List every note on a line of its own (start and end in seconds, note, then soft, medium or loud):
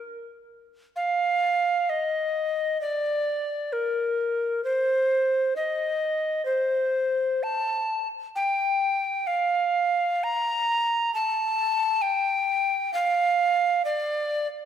0.96 1.91 F5 medium
1.90 2.81 D#5 medium
2.81 3.74 D5 medium
3.73 4.64 A#4 medium
4.64 5.54 C5 medium
5.56 6.45 D#5 medium
6.45 7.45 C5 medium
7.43 8.08 A5 medium
8.36 9.28 G5 medium
9.27 10.25 F5 medium
10.24 11.14 A#5 medium
11.14 12.03 A5 medium
12.02 12.93 G5 loud
12.94 13.83 F5 medium
13.85 14.48 D5 loud